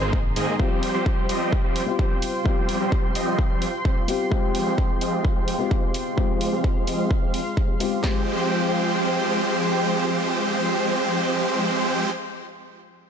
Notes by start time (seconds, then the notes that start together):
Already playing: A#3 C4 D#4 G#4 D#5 A#5 C6
0.01 G#1 D#3 A#3 C4 G#4 C5
0.13 kick
0.36 G#2 D#3 A#3 C4 G#4 D#5, open hi-hat
0.58 F3 G3 C4 F4 G4 C5 G5, kick
0.83 open hi-hat
0.94 F3 G3 C4 G4 C5
1.06 kick
1.29 F3 G3 C4 G4 D#5, open hi-hat
1.53 kick
1.64 F3 G3 C4 G4 C5
1.76 open hi-hat
1.86 G3 C4 F4 G4
1.99 F3 G3 C4 G4 C5, kick
2.22 open hi-hat
2.44 F3 G3 C4 F4 G4 C5, kick
2.69 open hi-hat
2.80 F3 G3 C4 G4 C5
2.92 kick
3.15 F3 G3 C4 G4 D#5, open hi-hat
3.39 kick
3.50 F3 G3 C4 G4 C5
3.62 open hi-hat
3.85 F3 G3 C4 G4 C5, kick
4.08 G3 C4 F4 G4, open hi-hat
4.30 F3 G#3 C4 F4 G4 C5, kick
4.55 open hi-hat
4.66 F3 G#3 C4 G4 C5
4.78 kick
5.01 F3 G#3 C4 G4 D#5, open hi-hat
5.25 kick
5.36 F3 G#3 C4 G4 C5
5.48 open hi-hat
5.58 G#3 C4 F4 G4
5.71 F3 G#3 C4 G4 C5, kick
5.94 open hi-hat
6.17 F3 G#3 C4 F4 G4 C5 F5, kick
6.41 open hi-hat
6.52 F3 G#3 C4 G4 C5
6.64 kick
6.87 F3 G#3 C4 G4 D#5, open hi-hat
7.11 kick
7.22 F3 G#3 C4 G4 C5
7.34 open hi-hat
7.57 F3 G#3 C4 G4 C5, kick
7.80 G#3 C4 F4 G4, open hi-hat
8.02 F3 G#3 C4 F4 G4 C5 G5, kick, snare, clap